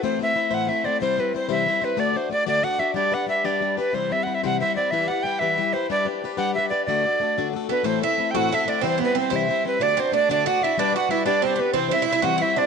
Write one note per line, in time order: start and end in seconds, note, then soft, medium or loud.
0.02 0.20 A2 medium
0.02 0.20 E3 medium
0.02 0.21 A3 medium
0.02 0.20 C4 medium
0.02 0.20 E4 medium
0.02 0.20 C5 medium
0.02 0.18 C5 medium
0.19 0.33 A3 soft
0.19 0.34 C4 soft
0.19 0.35 E4 soft
0.19 0.35 C5 soft
0.19 0.56 E5 medium
0.34 0.50 A3 soft
0.34 0.50 C4 soft
0.34 0.50 E4 medium
0.34 0.49 C5 medium
0.50 0.69 A2 medium
0.50 0.69 E3 medium
0.50 0.66 A3 medium
0.50 0.68 C4 medium
0.50 0.68 E4 medium
0.50 0.68 C5 medium
0.50 0.65 F#5 loud
0.65 0.84 A3 medium
0.65 0.85 C4 medium
0.65 0.84 E4 medium
0.65 0.87 E5 medium
0.65 0.70 F#5 medium
0.70 0.83 C5 medium
0.84 1.01 A3 soft
0.84 1.01 C4 medium
0.84 1.01 E4 soft
0.84 1.01 C5 soft
0.84 1.00 D5 medium
1.00 1.18 C3 medium
1.00 1.18 E3 medium
1.00 1.19 G3 medium
1.00 1.18 C4 medium
1.00 1.17 E4 medium
1.00 1.21 C5 medium
1.00 1.16 C5 medium
1.17 1.32 G3 soft
1.17 1.33 C4 soft
1.17 1.33 E4 soft
1.17 1.35 B4 medium
1.17 1.33 C5 medium
1.33 1.49 G3 medium
1.33 1.49 C4 medium
1.33 1.48 E4 medium
1.33 1.47 C5 medium
1.33 1.50 C5 medium
1.49 1.67 C3 medium
1.49 1.67 E3 medium
1.49 1.65 G3 medium
1.49 1.67 C4 medium
1.49 1.67 E4 medium
1.49 1.66 C5 medium
1.49 1.86 E5 medium
1.66 1.83 G3 medium
1.66 1.82 C4 medium
1.66 1.81 E4 medium
1.66 1.80 C5 medium
1.81 1.97 G3 soft
1.81 1.97 C4 soft
1.81 1.98 E4 soft
1.81 2.01 B4 medium
1.81 1.98 C5 medium
1.97 2.15 D3 medium
1.97 2.15 A3 medium
1.97 2.15 D4 medium
1.97 2.14 F#4 medium
1.97 2.13 D5 medium
1.97 2.18 D5 medium
2.14 2.29 D4 soft
2.14 2.30 F#4 soft
2.14 2.32 C5 medium
2.14 2.31 D5 medium
2.30 2.46 A3 soft
2.30 2.46 D4 medium
2.30 2.46 F#4 medium
2.30 2.47 D5 medium
2.30 2.45 D5 medium
2.46 2.65 D3 medium
2.46 2.61 A3 medium
2.46 2.62 D4 medium
2.46 2.63 F#4 medium
2.46 2.64 D5 medium
2.46 2.65 D5 loud
2.62 2.79 A3 medium
2.62 2.80 D4 medium
2.62 2.79 F#4 medium
2.62 2.78 D5 medium
2.62 2.81 F#5 loud
2.79 2.95 D4 soft
2.79 2.96 F#4 medium
2.79 2.95 D5 soft
2.79 2.94 E5 medium
2.94 3.12 G3 medium
2.94 3.13 D4 medium
2.94 3.13 G4 medium
2.94 3.11 B4 medium
2.94 3.15 D5 medium
3.12 3.27 D4 soft
3.12 3.28 G4 soft
3.12 3.28 B4 medium
3.12 3.28 F#5 medium
3.27 3.44 G3 medium
3.27 3.44 D4 medium
3.27 3.44 G4 medium
3.27 3.43 B4 medium
3.27 3.47 E5 medium
3.44 3.60 G3 soft
3.44 3.61 D4 medium
3.44 3.61 G4 medium
3.44 3.62 B4 medium
3.44 3.78 D5 medium
3.61 3.77 G3 medium
3.61 3.78 D4 medium
3.61 3.77 G4 medium
3.61 3.76 B4 medium
3.77 3.94 D4 soft
3.77 3.94 G4 soft
3.77 3.94 B4 soft
3.77 3.96 B4 medium
3.93 4.11 C3 medium
3.93 4.11 E3 medium
3.93 4.11 G3 medium
3.93 4.10 C4 medium
3.93 4.09 E4 medium
3.93 4.14 C5 medium
3.93 4.08 C5 medium
4.09 4.25 G3 soft
4.09 4.26 C4 soft
4.09 4.26 E4 soft
4.09 4.26 C5 soft
4.09 4.25 E5 medium
4.23 4.42 G3 medium
4.23 4.43 C4 soft
4.23 4.43 E4 medium
4.23 4.36 F#5 medium
4.28 4.42 C5 medium
4.35 4.44 E5 medium
4.43 4.61 C3 medium
4.43 4.61 E3 soft
4.43 4.59 G3 medium
4.43 4.59 C4 medium
4.43 4.61 E4 medium
4.43 4.60 C5 medium
4.43 4.60 F#5 loud
4.60 4.76 G3 medium
4.60 4.76 C4 medium
4.60 4.76 E4 medium
4.60 4.74 C5 medium
4.60 4.75 E5 medium
4.75 4.92 G3 soft
4.75 4.92 C4 soft
4.75 4.92 E4 soft
4.75 4.91 C5 soft
4.75 4.92 D5 medium
4.91 5.09 E3 medium
4.91 5.09 G3 medium
4.91 5.09 E4 medium
4.91 5.08 G4 medium
4.91 5.07 B4 medium
4.91 5.09 E5 loud
5.08 5.24 E4 soft
5.08 5.24 G4 soft
5.08 5.24 B4 soft
5.08 5.24 F#5 loud
5.23 5.40 G3 medium
5.23 5.41 E4 soft
5.23 5.41 G4 medium
5.23 5.40 B4 medium
5.23 5.41 G5 medium
5.39 5.56 G3 medium
5.39 5.57 E4 medium
5.39 5.58 G4 medium
5.39 5.58 B4 medium
5.39 5.75 E5 medium
5.43 5.59 E3 medium
5.58 5.73 G3 medium
5.58 5.74 E4 medium
5.58 5.73 G4 medium
5.58 5.72 B4 medium
5.73 5.90 E4 soft
5.73 5.90 G4 soft
5.73 5.89 B4 soft
5.73 5.89 C5 medium
5.90 6.07 G3 medium
5.90 6.06 D4 medium
5.90 6.05 G4 medium
5.90 6.04 B4 medium
5.90 6.06 D5 loud
6.05 6.23 D4 soft
6.05 6.22 G4 soft
6.05 6.22 B4 medium
6.22 6.38 G3 medium
6.22 6.37 D4 medium
6.22 6.37 G4 medium
6.22 6.36 B4 medium
6.37 6.55 G3 medium
6.37 6.55 D4 medium
6.37 6.55 G4 medium
6.37 6.55 B4 medium
6.37 6.54 F#5 loud
6.55 6.71 G3 medium
6.55 6.72 D4 medium
6.55 6.71 G4 medium
6.55 6.70 B4 medium
6.55 6.69 E5 medium
6.69 6.87 G4 soft
6.69 6.87 B4 medium
6.69 6.85 D5 medium
6.73 6.87 D4 soft
6.85 7.04 D3 medium
6.85 7.05 A3 medium
6.85 7.05 D4 medium
6.85 7.04 A4 medium
6.85 7.48 D5 medium
6.90 7.05 F#4 medium
7.05 7.20 D4 soft
7.05 7.21 F#4 soft
7.05 7.21 A4 soft
7.20 7.36 A3 medium
7.20 7.36 D4 medium
7.20 7.37 F#4 medium
7.20 7.36 A4 medium
7.38 7.55 D3 medium
7.38 7.52 A3 medium
7.38 7.53 D4 medium
7.38 7.54 F#4 medium
7.38 7.54 A4 medium
7.53 7.69 A3 medium
7.53 7.70 D4 medium
7.53 7.69 F#4 medium
7.53 7.68 A4 medium
7.69 7.84 B3 medium
7.69 7.84 D4 soft
7.69 7.85 F#4 soft
7.69 7.84 A4 soft
7.69 7.85 B4 medium
7.83 8.01 A2 medium
7.83 8.02 E3 medium
7.83 8.02 A3 medium
7.83 8.00 C4 medium
7.83 8.02 C4 medium
7.83 8.01 E4 medium
7.83 8.00 A4 medium
7.83 8.02 C5 medium
8.01 8.17 A3 soft
8.01 8.17 C4 soft
8.01 8.18 E4 soft
8.01 8.32 E4 medium
8.01 8.17 A4 soft
8.01 8.32 E5 medium
8.18 8.34 A3 medium
8.18 8.34 C4 medium
8.18 8.34 E4 soft
8.18 8.33 A4 medium
8.31 8.51 E4 medium
8.31 8.52 F#4 medium
8.31 8.51 A4 medium
8.31 8.38 G5 medium
8.36 8.52 A2 medium
8.36 8.52 E3 medium
8.36 8.50 A3 medium
8.36 8.51 C4 medium
8.36 8.56 F#5 medium
8.51 8.67 A3 medium
8.51 8.66 C4 medium
8.51 8.65 E4 medium
8.51 8.66 E4 medium
8.51 8.64 A4 medium
8.51 8.64 E5 medium
8.64 8.82 A3 soft
8.64 8.83 C4 soft
8.64 8.82 E4 soft
8.64 8.82 A4 medium
8.64 8.71 E5 medium
8.68 8.83 D4 medium
8.68 8.84 D5 medium
8.81 8.99 C3 medium
8.81 9.00 E3 medium
8.81 9.00 G3 medium
8.81 8.97 C4 medium
8.81 9.00 C4 medium
8.81 9.00 E4 medium
8.81 8.98 C5 medium
8.81 8.99 C5 medium
8.98 9.14 G3 soft
8.98 9.14 B3 medium
8.98 9.15 C4 soft
8.98 9.16 E4 soft
8.98 9.15 C5 soft
9.04 9.16 B4 medium
9.15 9.31 G3 medium
9.15 9.30 C4 medium
9.15 9.31 C4 medium
9.15 9.31 E4 medium
9.15 9.30 C5 medium
9.20 9.37 C5 medium
9.30 9.49 C3 medium
9.30 9.49 E3 medium
9.30 9.47 G3 medium
9.30 9.48 C4 medium
9.30 9.76 E4 medium
9.30 9.49 E4 medium
9.30 9.48 C5 medium
9.36 9.66 E5 medium
9.48 9.64 G3 medium
9.48 9.64 C4 medium
9.48 9.64 E4 medium
9.48 9.63 C5 medium
9.64 9.80 G3 soft
9.64 9.80 C4 soft
9.64 9.80 E4 soft
9.64 9.84 B4 medium
9.64 9.80 C5 soft
9.80 9.97 D3 medium
9.80 9.97 A3 medium
9.80 9.97 D4 medium
9.80 9.98 D4 medium
9.80 9.97 F#4 medium
9.80 9.95 D5 medium
9.80 10.01 D5 loud
9.96 10.12 C4 medium
9.96 10.11 D4 soft
9.96 10.12 F#4 soft
9.96 10.14 C5 medium
9.96 10.13 D5 soft
10.12 10.28 A3 medium
10.12 10.29 D4 medium
10.12 10.28 D4 medium
10.12 10.29 F#4 medium
10.12 10.28 D5 soft
10.12 10.29 D5 medium
10.29 10.47 D3 medium
10.29 10.44 A3 medium
10.29 10.46 D4 medium
10.29 10.46 F#4 medium
10.29 10.46 D5 medium
10.29 10.49 D5 loud
10.45 10.61 A3 medium
10.45 10.62 D4 medium
10.45 10.61 F#4 medium
10.45 10.62 F#4 medium
10.45 10.60 D5 medium
10.45 10.65 F#5 medium
10.62 10.77 D4 soft
10.62 10.78 E4 medium
10.62 10.78 F#4 soft
10.62 10.77 D5 medium
10.62 10.81 E5 medium
10.78 10.95 G3 medium
10.78 10.94 D4 medium
10.78 10.93 G4 medium
10.78 10.91 B4 medium
10.78 10.96 D5 medium
10.93 11.09 D4 soft
10.93 11.10 F#4 medium
10.93 11.10 G4 soft
10.93 11.09 B4 soft
10.93 11.12 F#5 medium
11.09 11.26 G3 medium
11.09 11.26 D4 medium
11.09 11.25 E4 medium
11.09 11.25 G4 medium
11.09 11.24 B4 medium
11.09 11.25 E5 medium
11.26 11.41 G3 medium
11.26 11.44 D4 medium
11.26 11.42 D4 medium
11.26 11.43 G4 medium
11.26 11.43 B4 medium
11.26 11.42 D5 medium
11.42 11.59 G3 medium
11.42 11.55 C4 medium
11.42 11.59 D4 medium
11.42 11.58 G4 medium
11.42 11.57 B4 medium
11.42 11.62 C5 medium
11.56 11.73 B3 medium
11.56 11.75 G4 soft
11.56 11.75 B4 soft
11.60 11.75 D4 soft
11.60 11.74 B4 medium
11.74 11.92 C3 medium
11.74 11.92 E3 medium
11.74 11.90 G3 medium
11.74 11.92 C4 medium
11.74 11.90 C4 medium
11.74 11.89 E4 medium
11.74 11.91 C5 medium
11.74 11.87 C5 medium
11.88 12.04 G3 soft
11.88 12.05 C4 soft
11.88 12.06 E4 soft
11.88 12.01 E4 medium
11.88 12.06 C5 soft
11.88 12.07 E5 medium
12.02 12.22 G3 medium
12.02 12.11 E4 medium
12.06 12.22 C4 medium
12.06 12.22 E4 medium
12.06 12.22 C5 medium
12.06 12.26 E5 medium
12.13 12.22 E4 medium
12.22 12.41 C3 soft
12.22 12.41 E3 medium
12.22 12.39 G3 medium
12.22 12.40 C4 medium
12.22 12.41 E4 medium
12.22 12.37 F#4 medium
12.22 12.41 C5 medium
12.22 12.43 F#5 loud
12.38 12.56 G3 medium
12.38 12.57 C4 medium
12.38 12.54 E4 medium
12.42 12.57 E4 medium
12.42 12.56 C5 medium
12.42 12.60 E5 loud
12.56 12.66 G3 soft
12.56 12.66 C4 soft
12.56 12.66 D4 medium
12.56 12.66 E4 medium
12.56 12.66 C5 soft
12.56 12.66 D5 medium